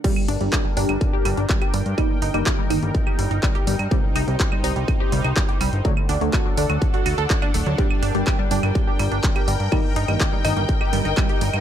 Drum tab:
CC |x---------------|----------------|----------------|----------------|
HH |x-oxx-oxx-oxxxox|x-oxx-oxx-oxxxox|x-oxx-oxx-oxxxox|x-oxx-oxxxoxxxox|
CL |-x--x--x--x--x--|x--x--x--x--x--x|--x--x--x--x--x-|-x--x--x--x--x--|
CP |----x-------x---|----x-------x---|----x-------x---|----x-------x---|
BD |o---o---o---o---|o---o---o---o---|o---o---o---o---|o---o---o---o---|

CC |----------------|----------------|
HH |x-oxx-oxx-oxxxox|x-oxx-oxx-oxxxox|
CL |-x--x--x--x--x--|x--x--x--x--x--x|
CP |----x-------x---|----x-------x---|
BD |o---o---o---o---|o---o---o---o---|